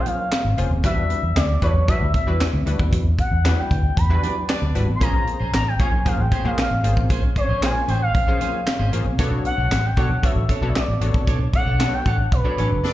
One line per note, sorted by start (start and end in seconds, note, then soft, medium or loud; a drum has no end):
0.00 0.23 A#3 medium
0.00 0.23 C#4 medium
0.00 0.23 F4 medium
0.00 0.23 G#4 medium
0.00 0.23 C5 medium
0.06 0.58 F5 loud
0.06 closed hi-hat medium
0.06 muted conga medium
0.06 low conga medium
0.32 snare loud
0.32 clap medium
0.32 closed hi-hat medium
0.32 high conga medium
0.45 0.54 G#1 medium
0.45 high conga medium
0.57 0.67 F1 medium
0.57 0.70 A#3 medium
0.57 0.70 C#4 medium
0.57 0.70 F4 medium
0.57 0.70 G#4 medium
0.57 0.70 C5 medium
0.57 closed hi-hat medium
0.71 0.85 D#1 loud
0.71 high conga medium
0.83 1.03 E2 loud
0.83 1.20 G3 medium
0.83 1.20 D4 medium
0.83 1.21 E4 medium
0.83 1.21 F#4 medium
0.83 1.21 B4 loud
0.83 1.38 E5 loud
0.83 kick loud
0.83 closed hi-hat loud
0.83 muted conga medium
1.10 closed hi-hat medium
1.10 muted conga medium
1.23 1.33 E2 loud
1.36 1.55 D2 loud
1.36 1.64 D5 loud
1.36 snare loud
1.36 clap loud
1.36 closed hi-hat loud
1.36 high conga medium
1.62 1.81 E2 medium
1.62 1.74 G3 medium
1.62 1.74 D4 medium
1.62 1.74 E4 medium
1.62 1.74 F#4 medium
1.62 1.75 B4 loud
1.62 1.88 C#5 loud
1.62 kick loud
1.62 closed hi-hat medium
1.74 low conga medium
1.88 2.06 G3 medium
1.88 2.06 D4 medium
1.88 2.06 E4 medium
1.88 2.06 F#4 medium
1.88 2.07 B4 medium
1.88 2.13 E5 loud
1.88 kick loud
1.88 closed hi-hat medium
2.01 2.11 D2 loud
2.14 2.63 E5 loud
2.14 kick loud
2.14 closed hi-hat medium
2.14 muted conga medium
2.27 2.37 E2 medium
2.27 2.45 G3 medium
2.27 2.45 D4 medium
2.27 2.46 E4 medium
2.27 2.46 F#4 medium
2.27 2.46 B4 medium
2.40 snare loud
2.40 clap medium
2.40 closed hi-hat medium
2.40 high conga medium
2.53 2.63 D2 loud
2.53 high conga medium
2.66 2.76 D2 loud
2.66 3.03 G3 medium
2.66 3.03 D4 medium
2.66 3.03 E4 medium
2.66 3.03 F#4 medium
2.66 3.03 B4 medium
2.66 closed hi-hat medium
2.79 2.89 D#2 loud
2.79 kick loud
2.79 high conga medium
2.92 3.12 E2 loud
2.92 kick loud
2.92 closed hi-hat loud
2.92 muted conga medium
3.19 3.60 F#5 medium
3.19 kick medium
3.19 closed hi-hat medium
3.19 muted conga medium
3.32 3.51 E2 loud
3.44 3.75 G3 medium
3.44 3.75 D4 medium
3.44 3.75 E4 medium
3.44 3.75 F#4 medium
3.44 3.75 B4 medium
3.44 snare loud
3.44 clap medium
3.44 closed hi-hat medium
3.44 high conga medium
3.59 3.99 G5 loud
3.71 3.90 D2 medium
3.71 kick loud
3.71 closed hi-hat medium
3.97 4.16 E2 loud
3.97 4.50 B5 loud
3.97 kick loud
3.97 closed hi-hat medium
3.97 muted conga soft
4.10 4.40 G3 medium
4.10 4.40 D4 medium
4.10 4.40 E4 medium
4.10 4.41 F#4 medium
4.10 4.41 B4 medium
4.23 4.34 D4 medium
4.23 4.34 G4 medium
4.23 4.34 B4 medium
4.23 4.34 D5 medium
4.23 closed hi-hat medium
4.23 muted conga medium
4.23 low conga medium
4.49 4.86 D4 loud
4.49 4.86 G4 loud
4.49 4.86 B4 loud
4.49 4.86 D5 loud
4.49 snare loud
4.49 clap medium
4.49 closed hi-hat medium
4.49 high conga medium
4.62 4.71 D2 loud
4.62 high conga medium
4.75 4.85 G#1 medium
4.75 4.87 G3 medium
4.75 4.87 D4 medium
4.75 4.87 E4 medium
4.75 4.87 F#4 medium
4.75 4.88 B4 medium
4.75 closed hi-hat medium
4.88 4.98 A1 medium
4.88 high conga medium
4.95 5.04 C6 medium
5.01 5.20 A#1 loud
5.01 5.38 A#3 medium
5.01 5.21 C#4 medium
5.01 5.38 C#4 medium
5.01 5.38 F4 medium
5.01 5.38 G#4 medium
5.01 5.14 G#4 medium
5.01 5.38 C5 medium
5.01 5.12 C5 medium
5.01 5.54 A#5 loud
5.01 kick loud
5.01 closed hi-hat loud
5.01 muted conga medium
5.14 muted clean electric guitar stroke medium
5.27 muted clean electric guitar stroke soft
5.27 closed hi-hat medium
5.27 muted conga medium
5.40 5.50 A#1 medium
5.40 5.52 C#4 medium
5.40 5.53 G#4 medium
5.40 5.53 C5 medium
5.53 5.73 A1 loud
5.53 5.69 A#5 loud
5.53 muted clean electric guitar stroke soft
5.53 snare loud
5.53 clap loud
5.53 closed hi-hat loud
5.53 high conga medium
5.66 5.82 G5 loud
5.66 muted clean electric guitar stroke soft
5.79 5.99 A#1 medium
5.79 5.91 A#3 medium
5.79 5.99 C#4 medium
5.79 5.92 C#4 medium
5.79 5.92 F4 medium
5.79 5.92 G#4 medium
5.79 5.91 C5 loud
5.79 5.92 C#5 loud
5.79 6.09 G#5 loud
5.79 kick loud
5.79 closed hi-hat medium
5.92 muted clean electric guitar stroke medium
5.92 low conga medium
6.05 6.24 A#3 medium
6.05 6.24 C#4 medium
6.05 6.24 F4 medium
6.05 6.24 G#4 medium
6.05 6.24 C5 medium
6.05 6.22 F5 medium
6.05 kick loud
6.05 closed hi-hat medium
6.05 muted conga soft
6.18 6.28 A1 medium
6.18 6.48 G5 medium
6.18 muted clean electric guitar stroke soft
6.31 6.51 C#4 medium
6.31 6.45 G#4 loud
6.31 6.44 C5 medium
6.31 kick loud
6.31 closed hi-hat medium
6.31 muted conga medium
6.45 6.54 A#1 medium
6.45 6.63 A#3 medium
6.45 6.63 C#4 medium
6.45 6.63 F4 medium
6.45 6.63 G#4 medium
6.45 6.63 C5 loud
6.45 6.59 F5 medium
6.45 muted clean electric guitar stroke medium
6.58 6.95 F5 medium
6.58 snare loud
6.58 clap medium
6.58 closed hi-hat medium
6.58 high conga medium
6.71 6.80 A1 medium
6.71 muted clean electric guitar stroke medium
6.71 high conga medium
6.84 6.93 G#1 medium
6.84 7.20 A#3 medium
6.84 7.20 C#4 medium
6.84 7.20 F4 medium
6.84 7.21 G#4 medium
6.84 7.21 C5 medium
6.84 closed hi-hat medium
6.97 7.06 A1 loud
6.97 muted clean electric guitar stroke medium
6.97 kick medium
6.97 high conga medium
7.09 7.29 A#1 loud
7.09 7.30 C#4 medium
7.09 7.23 G#4 medium
7.09 7.22 C5 loud
7.09 kick loud
7.09 closed hi-hat loud
7.09 muted conga medium
7.23 muted clean electric guitar stroke medium
7.36 7.49 C#4 medium
7.36 7.49 G#4 medium
7.36 7.48 C5 medium
7.36 7.65 C#5 medium
7.36 kick medium
7.36 closed hi-hat medium
7.36 muted conga medium
7.49 7.68 A#1 loud
7.49 7.65 C#4 medium
7.49 7.65 G#4 medium
7.49 7.65 C5 medium
7.62 7.93 A#3 medium
7.62 7.93 C#4 medium
7.62 7.93 F4 medium
7.62 7.93 G#4 medium
7.62 7.93 C5 medium
7.62 7.90 G#5 loud
7.62 snare loud
7.62 clap medium
7.62 closed hi-hat medium
7.62 high conga medium
7.75 muted clean electric guitar stroke medium
7.88 8.07 A1 medium
7.88 8.08 C#4 medium
7.88 8.01 G#4 medium
7.88 8.00 C5 medium
7.88 8.02 G5 loud
7.88 closed hi-hat medium
8.01 8.89 F5 loud
8.01 muted clean electric guitar stroke medium
8.14 8.34 A#1 loud
8.14 muted clean electric guitar stroke soft
8.14 kick loud
8.14 closed hi-hat medium
8.27 8.58 A#3 medium
8.27 8.58 C#4 medium
8.27 8.39 C#4 soft
8.27 8.58 F4 medium
8.27 8.40 G#4 medium
8.27 8.58 G#4 medium
8.27 8.58 C5 loud
8.27 8.41 C#5 medium
8.40 8.60 C#4 medium
8.40 8.53 G#4 medium
8.40 8.52 C5 loud
8.40 closed hi-hat medium
8.40 muted conga soft
8.40 low conga medium
8.53 muted clean electric guitar stroke soft
8.66 muted clean electric guitar stroke medium
8.66 snare loud
8.66 clap medium
8.66 closed hi-hat medium
8.66 high conga medium
8.79 8.89 G#1 medium
8.79 8.91 C#4 medium
8.79 8.92 G#4 medium
8.79 8.93 C5 medium
8.79 high conga medium
8.92 9.02 A1 loud
8.92 9.05 A#3 medium
8.92 9.05 C#4 medium
8.92 9.05 F4 medium
8.92 9.05 G#4 medium
8.92 9.05 C5 medium
8.92 muted clean electric guitar stroke soft
8.92 closed hi-hat medium
9.05 9.15 A#1 loud
9.05 muted clean electric guitar stroke medium
9.05 high conga medium
9.19 9.38 B1 loud
9.19 9.55 B3 loud
9.19 9.38 D4 medium
9.19 9.55 D4 loud
9.19 9.55 F#4 medium
9.19 9.55 A4 medium
9.19 9.32 A4 loud
9.19 9.56 C#5 loud
9.19 9.31 C#5 loud
9.19 kick loud
9.19 closed hi-hat loud
9.19 muted conga medium
9.32 muted clean electric guitar stroke medium
9.45 9.87 F#5 loud
9.45 muted clean electric guitar stroke medium
9.45 closed hi-hat medium
9.45 muted conga medium
9.57 9.67 B1 loud
9.57 9.70 D4 medium
9.57 9.70 A4 medium
9.57 9.71 C#5 medium
9.71 9.90 A1 loud
9.71 muted clean electric guitar stroke soft
9.71 snare loud
9.71 clap medium
9.71 closed hi-hat loud
9.71 high conga medium
9.83 10.00 G5 loud
9.83 muted clean electric guitar stroke medium
9.97 10.16 B1 loud
9.97 10.09 B3 medium
9.97 10.09 D4 medium
9.97 10.17 D4 medium
9.97 10.09 F#4 medium
9.97 10.09 A4 medium
9.97 10.10 A4 loud
9.97 10.09 C#5 loud
9.97 10.26 F#5 loud
9.97 kick loud
9.97 closed hi-hat medium
10.10 muted clean electric guitar stroke soft
10.10 low conga medium
10.23 10.41 B3 medium
10.23 10.41 D4 medium
10.23 10.41 F#4 medium
10.23 10.41 A4 medium
10.23 10.42 C#5 loud
10.23 10.69 E5 loud
10.23 kick loud
10.23 closed hi-hat medium
10.23 muted conga soft
10.36 10.46 A1 loud
10.36 muted clean electric guitar stroke soft
10.49 10.69 D4 medium
10.49 10.62 A4 medium
10.49 10.61 C#5 loud
10.49 kick loud
10.49 closed hi-hat medium
10.49 muted conga medium
10.62 10.72 B1 medium
10.62 10.80 B3 medium
10.62 10.80 D4 medium
10.62 10.81 F#4 medium
10.62 10.81 A4 medium
10.62 10.81 C#5 medium
10.62 muted clean electric guitar stroke soft
10.69 10.79 E5 medium
10.75 11.15 D5 medium
10.75 snare loud
10.75 clap medium
10.75 closed hi-hat medium
10.75 high conga medium
10.88 10.98 A1 loud
10.88 muted clean electric guitar stroke medium
10.88 high conga medium
11.01 11.11 A1 medium
11.01 11.38 B3 medium
11.01 11.38 D4 medium
11.01 11.38 F#4 medium
11.01 11.38 A4 medium
11.01 11.38 C#5 medium
11.01 closed hi-hat medium
11.14 11.24 A#1 loud
11.14 muted clean electric guitar stroke medium
11.14 kick loud
11.14 high conga medium
11.27 11.47 B1 loud
11.27 11.47 D4 medium
11.27 11.40 A4 medium
11.27 11.39 C#5 loud
11.27 kick loud
11.27 closed hi-hat loud
11.27 muted conga medium
11.40 muted clean electric guitar stroke medium
11.53 11.67 D4 medium
11.53 11.66 A4 medium
11.53 11.65 C#5 medium
11.53 11.95 F#5 loud
11.53 kick medium
11.53 closed hi-hat medium
11.53 muted conga medium
11.66 11.86 B1 loud
11.66 11.83 D4 medium
11.66 11.82 A4 medium
11.66 11.82 C#5 medium
11.79 12.10 B3 medium
11.79 12.10 D4 medium
11.79 12.10 F#4 medium
11.79 12.10 A4 medium
11.79 12.10 C#5 medium
11.79 snare loud
11.79 clap medium
11.79 closed hi-hat loud
11.79 high conga medium
11.93 12.08 G5 loud
11.93 muted clean electric guitar stroke soft
12.05 12.25 A1 medium
12.05 12.25 D4 medium
12.05 12.19 A4 medium
12.05 12.17 C#5 medium
12.05 12.34 F#5 loud
12.05 kick loud
12.05 closed hi-hat medium
12.19 muted clean electric guitar stroke medium
12.32 12.42 B1 loud
12.32 12.93 B4 loud
12.32 muted clean electric guitar stroke soft
12.32 kick loud
12.32 closed hi-hat medium
12.32 muted conga soft
12.44 12.75 B3 medium
12.44 12.75 D4 medium
12.44 12.56 D4 medium
12.44 12.75 F#4 medium
12.44 12.75 A4 medium
12.44 12.57 A4 medium
12.44 12.75 C#5 medium
12.44 12.59 D5 medium
12.57 12.67 A1 loud
12.57 12.69 C#4 medium
12.57 12.77 D4 medium
12.57 12.69 F#4 medium
12.57 12.69 A4 medium
12.57 12.70 A4 loud
12.57 12.69 C#5 medium
12.57 12.69 C#5 loud
12.57 closed hi-hat medium
12.57 muted conga medium
12.57 low conga medium
12.70 12.80 F#1 loud
12.70 muted clean electric guitar stroke soft
12.84 12.93 D4 loud
12.84 12.93 F#4 loud
12.84 12.93 A4 loud
12.84 12.93 D5 loud
12.84 snare medium
12.84 high conga medium